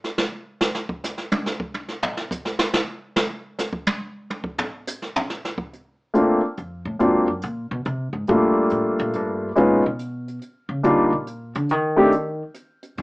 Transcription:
0.04 snare
0.18 snare
0.61 snare
0.75 snare
0.89 kick
1.04 snare, hi-hat pedal
1.18 snare
1.32 high tom
1.46 snare
1.60 kick
1.74 high tom
1.88 snare
2.03 floor tom
2.17 snare
2.31 kick, hi-hat pedal
2.45 snare
2.59 snare
2.74 snare
3.16 snare
3.59 snare, hi-hat pedal
3.73 kick
3.87 high tom
4.30 high tom
4.44 kick
4.58 floor tom
4.87 hi-hat pedal
5.02 snare
5.16 floor tom
5.30 snare
5.45 snare
5.58 kick
5.73 closed hi-hat
6.14 A3 A#3 C4 D4 F4, closed hi-hat
6.57 F2, closed hi-hat
6.85 A2
6.99 G#2 F#3 A#3 C4 D4 F4, closed hi-hat
7.28 F#2
7.42 A#2, closed hi-hat
7.71 B2
7.85 C3, closed hi-hat
8.13 G#2
8.27 A#2 G3 A3 A#3 D4 F4, closed hi-hat
8.70 A2, closed hi-hat
8.99 A#2, closed hi-hat
9.13 G2, closed hi-hat
9.56 A#2 G#3 B3 C#4 D#4 F4, closed hi-hat
9.86 B2
9.99 closed hi-hat
10.28 closed hi-hat
10.42 closed hi-hat
10.69 C#3
10.83 D3 G3 A#3 D4 D#4 F4, closed hi-hat
11.13 A#2
11.27 closed hi-hat
11.55 D3, closed hi-hat
11.69 D#3, closed hi-hat
11.96 A3 C4 D4 D#4 G4
12.12 closed hi-hat
12.54 closed hi-hat
12.83 closed hi-hat
12.97 D#3, closed hi-hat

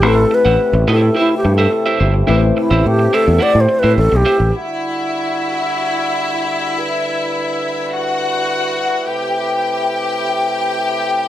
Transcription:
0.02 A1 C3 A3 C4 E4 G4 B4 C5 E5
0.07 A4
0.16 muted clean electric guitar stroke
0.31 B4, muted clean electric guitar stroke
0.45 A1 E4 G4 C5 F#5
0.73 A1, muted clean electric guitar stroke
0.88 A2 E4 G4 A4 C5 E5
1.02 muted clean electric guitar stroke
1.15 E4 G4 C5 E5
1.19 E4
1.31 muted clean electric guitar stroke
1.37 G4
1.45 G2, muted clean electric guitar stroke
1.56 E4 G4 A4 C5 E5
1.72 muted clean electric guitar stroke
1.86 E4 G4 C5 E5
1.99 G1 E4 G4 C5 E5
2.14 muted clean electric guitar stroke
2.27 A1 A3 C4 E4 G4 B4 C5 E5
2.36 C5
2.42 muted clean electric guitar stroke
2.57 E4, muted clean electric guitar stroke
2.71 A1 E4 G4 C5 E5
2.86 A2 G4
2.99 muted clean electric guitar stroke
3.13 E4 G4 A4 C5 E5
3.27 E2, muted clean electric guitar stroke
3.39 E4 G4 C5 D5 F#5
3.53 A2, muted clean electric guitar stroke
3.60 C5
3.69 muted clean electric guitar stroke
3.79 B4 E5
3.83 A2 E4 G4 C5
3.98 A1 A4
4.12 B1, muted clean electric guitar stroke
4.16 G4
4.25 E4 G4 C5 E5
4.38 A1, muted clean electric guitar stroke
4.53 D3 G3 E4 F#4 E5
6.80 B4
7.92 F#4 F#5
9.05 C3 A3 G4 G5

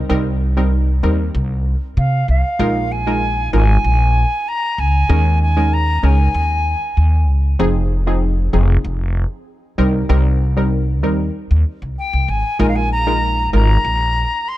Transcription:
0.09 C2 G3 C4 D#4 A#4
0.57 G3 C4 D#4 A#4
1.03 D#2 G3 C4 D#4 A#4
1.35 C2
1.97 C3 F5
2.28 C2 F5
2.59 A#1 G#3 D#4 F4 A#4
2.92 G#5
3.07 G#3 D#4 F4 A#4
3.53 G#1 G#3 D#4 F4 A#4 G#5
3.84 A#1
4.48 A#5
4.78 C#2 G#5
5.09 D#2 G#3 C#4 D#4 A#4
5.42 G#5
5.57 G#3 C#4 D#4 A#4
5.73 A#5
6.03 C#2 G#3 C#4 D#4 A#4 G#5
6.34 D#2
6.97 D#2
7.28 C#2
7.59 F1 F3 C4 D#4 G#4
8.07 F3 C4 D#4 G#4
8.53 F1 F3 C4 D#4 G#4
8.84 F1
9.78 C2 G3 C4 D#4 A#4
10.09 C2 G3 C4 D#4 A#4
10.57 G3 C4 D#4 A#4
11.03 D#2 G3 C4 D#4 A#4
11.51 D#2
11.82 C2
11.98 G5
12.13 C2
12.28 G#1 G#5
12.59 A#1 G#3 D#4 F4 A#4 G#5
12.68 F5
12.76 G#5
12.92 A#5
13.07 G#3 D#4 F4 A#4
13.53 G#1 G#3 D#4 F4 A#4 A#5
13.85 A#1
14.48 C6

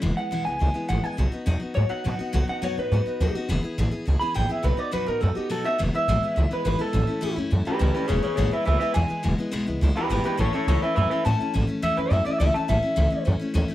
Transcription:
0.02 E1 E2 B2 E3 G#3 B3 E4
0.17 E3 G#3 B3 E4 F#5
0.31 B1 E2 B2 E3 G#3 B3 E4
0.45 C#2 E3 G#3 B3 E4 G#5
0.59 C#2 E3 G#3 B3 E4
0.74 E3 G#3 B3 E4, muted upright bass stroke
0.89 G#1 E2 B2 E3 G#3 B3 E4 F#5
1.03 E3 G#3 B3 E4 G#5
1.17 B1 B2 F#3 B3 D#4 F#4
1.32 B3 D#4 F#4, muted upright bass stroke
1.46 E2 B2 F#3 B3 D#4 F#4
1.60 B3 D#4 F#4, muted upright bass stroke
1.74 G#2 F#3 B3 D#4 F#4 C#5
1.89 B3 D#4 F#4 F#5, muted upright bass stroke
2.04 B2 F#3 B3 D#4 F#4
2.19 B3 D#4 F#4, muted upright bass stroke
2.33 B1 B2 F#3 B3 D#4 F#4
2.48 B3 D#4 F#4 F#5, muted upright bass stroke
2.62 F#2 B2 F#3 B3 D#4 F#4 C#5
2.77 A2 B3 D#4 F#4 B4
2.92 G#2 F#3 B3 D#4 F#4
3.06 B3 D#4 F#4, muted upright bass stroke
3.20 D#2 B2 F#3 B3 D#4 F#4
3.35 B3 D#4 F#4, muted upright bass stroke
3.48 E1 E2 B2 E3 B3 E4 G#4
3.62 E3 B3 E4 G#4, muted upright bass stroke
3.78 A1 E2 B2 E3 B3 E4 G#4
3.91 E3 B3 E4 G#4, muted upright bass stroke
4.06 C#2 E3 B3 E4 G#4
4.20 E3 B3 E4 G#4 B5
4.34 A1 E2 B2 E3 B3 E4 G#4 G5
4.49 E3 B3 E4 G#4 E5, muted upright bass stroke
4.63 B1 B2 F#3 B3 D#4 F#4 B4
4.77 B3 D#4 F#4 D5
4.91 F#2 B2 F#3 B3 D#4 F#4 B4
5.06 A2 B3 D#4 F#4 A#4
5.21 F#2 F#3 B3 D#4 F#4 A4
5.35 B3 D#4 F#4 G4, muted upright bass stroke
5.49 B2 F#3 B3 D#4 F#4 A4
5.64 B3 D#4 F#4 E5
5.78 E1 E2 B2 E3 G#3 B3 E4
5.94 E3 G#3 B3 E4 E5, muted upright bass stroke
6.08 A1 E2 B2 E3 G#3 B3 E4
6.22 E3 G#3 B3 E4, muted upright bass stroke
6.36 C#2 E3 G#3 B3 E4
6.51 E3 G#3 B3 E4 B4, muted upright bass stroke
6.65 G#1 E2 B2 E3 G#3 B3 E4 B4
6.79 E3 G#3 B3 E4 A4
6.93 A1 A2 E3 A3 C#4 E4
7.07 A3 C#4 E4, muted upright bass stroke
7.21 E2 A2 E3 A3 C#4 E4
7.36 F#2 A3 C#4 E4
7.51 F#2 E3 A3 C#4 E4
7.65 A3 C#4 E4 G4 B4, muted upright bass stroke
7.79 C#2 A2 E3 A3 C#4 E4 G4 B4
7.94 A3 C#4 E4 G4 B4, muted upright bass stroke
8.08 E1 E2 B2 E3 G#3 B3 E4 G#4 C#5
8.23 E3 G#3 B3 E4 G#4 C#5, muted upright bass stroke
8.36 A1 E2 B2 E3 G#3 B3 E4 G#4 C#5
8.51 E3 G#3 B3 E4 B4 E5, muted upright bass stroke
8.65 C#2 E3 G#3 B3 E4 B4 E5
8.79 E3 G#3 B3 E4 B4 E5, muted upright bass stroke
8.94 E2 B2 E3 G#3 B3 E4 G#5
9.08 E3 G#3 B3 E4, muted upright bass stroke
9.23 E1 E2 B2 E3 G#3 B3 E4
9.38 E3 G#3 B3 E4, muted upright bass stroke
9.51 B1 E2 B2 E3 G#3 B3 E4
9.66 C#2 E3 G#3 B3 E4
9.81 C#2 E3 G#3 B3 E4
9.96 E3 G#3 B3 E4 G4 B4, muted upright bass stroke
10.09 G#1 E2 B2 E3 G#3 B3 E4 G4 B4
10.24 E3 G#3 B3 E4 G4 B4, muted upright bass stroke
10.37 A1 A2 E3 A3 C#4 E4 A4 C#5
10.53 A3 C#4 E4 A4 C#5, muted upright bass stroke
10.67 C#2 A2 E3 A3 C#4 E4 A4 C#5
10.82 A3 C#4 E4 B4 E5, muted upright bass stroke
10.95 F#2 E3 A3 C#4 E4 B4 E5
11.10 A3 C#4 E4 B4 E5, muted upright bass stroke
11.25 A2 E3 A3 C#4 E4 A5
11.39 A3 C#4 E4, muted upright bass stroke
11.54 A1 A2 E3 A3 C#4 E4
11.67 A3 C#4 E4, muted upright bass stroke
11.82 E2 A2 E3 A3 C#4 E4 E5
11.97 F#2 A3 C#4 E4 B4
12.10 F#2 E3 A3 C#4 E4 E5
12.25 A3 C#4 E4 E5, muted upright bass stroke
12.40 C#2 A2 E3 A3 C#4 E4 E5
12.54 A3 C#4 E4 A5
12.68 A1 A2 E3 A3 C#4 E4 E5
12.82 A3 C#4 E4
12.96 C#2 A2 E3 A3 C#4 E4
13.10 A3 C#4 E4, muted upright bass stroke
13.25 F#2 E3 A3 C#4 E4
13.39 A3 C#4 E4, muted upright bass stroke
13.54 D#2 A2 E3 A3 C#4 E4
13.68 A3 C#4 E4

